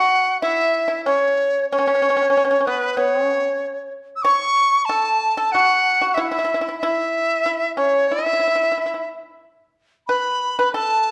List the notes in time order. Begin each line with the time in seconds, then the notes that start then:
Already playing: F#4 F#5
0.41 E4 E5
0.88 E4
1.05 C#4 C#5
1.71 C#4 C#5
1.79 C#4
1.87 C#4
1.95 C#4
2.02 C#4
2.10 C#4
2.16 C#4
2.22 C#4
2.30 C#4
2.37 C#4
2.45 C#4
2.51 C#4
2.60 C#4
2.66 B3 B4
2.97 B3 C#5
3.24 C#4
4.16 E6
4.22 C#5 C#6
4.85 A5
4.89 A4
5.37 A4
5.52 F#4 F#5
6.01 F#4
6.14 E4 E5
6.21 F#5
6.28 E4 E5
6.38 E4
6.44 E4
6.54 E4
6.61 E4
6.69 E4
6.78 E5
6.83 E4
7.46 E4
7.76 C#4 C#5
8.08 E4 E5
8.19 E4
8.26 E4
8.33 E4
8.40 E4
8.48 E4
8.55 E4
8.63 E4
8.72 E4
8.78 E4
8.86 E4
8.94 E4
10.07 B4 B5
10.59 B4
10.73 A4 A5